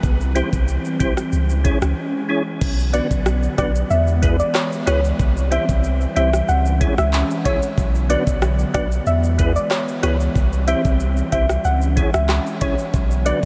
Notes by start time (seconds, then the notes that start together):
0.03 C2 E3 G3 C4, kick, shaker
0.21 shaker
0.35 C4 E4 G4 C5, closed hi-hat, shaker
0.53 C2, kick, shaker
0.68 shaker
0.85 shaker
1.00 B1 C4 E4 G4 C5, kick, closed hi-hat, shaker
1.17 cross-stick, shaker
1.32 C#2 G#3 C#4, shaker
1.49 shaker
1.64 C#4 E4 G#4 C#5, kick, closed hi-hat, shaker
1.82 C#2, cross-stick, shaker
2.29 C#4 E4 G#4 C#5
2.61 B1 D3 F#3 B3, kick, crash, shaker
2.79 shaker
2.93 B3 D4 F#4 B4 D5, closed hi-hat, shaker
3.11 B1, kick, shaker
3.26 cross-stick, shaker
3.43 shaker
3.58 B1 B3 D4 F#4 B4 D5, kick, cross-stick, closed hi-hat, shaker
3.75 shaker
3.90 E2 E3 G#3 E5, shaker
4.07 shaker
4.22 B3 E4 G#4 B4, kick, closed hi-hat, shaker
4.39 D5, shaker
4.55 C#5, cross-stick, clap, shaker
4.72 shaker
4.86 C#2 B3 E4 G#4 B4 C#5, cross-stick, closed hi-hat, shaker
5.04 shaker
5.19 C2 G3 C4, kick, shaker
5.37 shaker
5.51 C4 E4 G4 C5 E5, closed hi-hat, shaker
5.69 C2, kick, shaker
5.84 shaker
6.01 shaker
6.16 C2 C4 E4 G4 C5 E5, closed hi-hat, shaker
6.33 cross-stick, shaker
6.48 C#2 G#3 C#4 F#5, shaker
6.66 shaker
6.80 C#4 E4 G#4 C#5, kick, closed hi-hat, shaker
6.98 C#2 E5, cross-stick, shaker
7.13 clap, shaker
7.31 shaker
7.45 B1 C#4 E4 G#4 C#5 E5, kick, closed hi-hat, shaker
7.62 shaker
7.77 B1 D3 F#3 B3, kick, shaker
7.95 shaker
8.09 B3 D4 F#4 B4 D5, closed hi-hat, shaker
8.27 B1, kick, shaker
8.42 cross-stick, shaker
8.59 shaker
8.74 B1 B3 D4 F#4 B4 D5, kick, cross-stick, closed hi-hat, shaker
8.92 shaker
9.06 E2 E3 G#3 E5, shaker
9.24 shaker
9.38 B3 E4 G#4 B4, kick, closed hi-hat, shaker
9.56 D5, shaker
9.71 C#5, cross-stick, clap, shaker
9.88 shaker
10.03 C#2 B3 E4 G#4 B4 C#5, cross-stick, closed hi-hat, shaker
10.20 shaker
10.35 C2 G3 C4, kick, shaker
10.53 shaker
10.67 C4 E4 G4 C5 E5, closed hi-hat, shaker
10.85 C2, kick, shaker
11.00 shaker
11.17 shaker
11.32 C2 C4 E4 G4 C5 E5, kick, closed hi-hat, shaker
11.49 cross-stick, shaker
11.64 C#2 G#3 C#4 F#5, shaker
11.81 shaker
11.96 C#4 E4 G#4 C#5, kick, closed hi-hat, shaker
12.14 C#2 E5, cross-stick, shaker
12.29 cross-stick, clap, shaker
12.46 shaker
12.61 B1 C#4 E4 G#4 C#5, kick, closed hi-hat, shaker
12.78 shaker
12.94 B1 D3 F#3 B3, kick, shaker
13.11 shaker
13.25 B3 D4 F#4 B4 D5, closed hi-hat, shaker